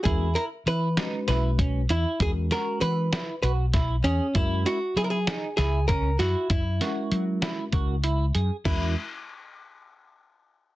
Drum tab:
CC |-------|-------|-------|-------|
HH |xxxxxxx|xxxxxxx|xxxxxxx|xxxxxxx|
SD |---oo--|-o-o-o-|---oo-o|-o-o---|
BD |o----o-|o----o-|o----o-|o---o--|

CC |x------|
HH |-------|
SD |-------|
BD |o------|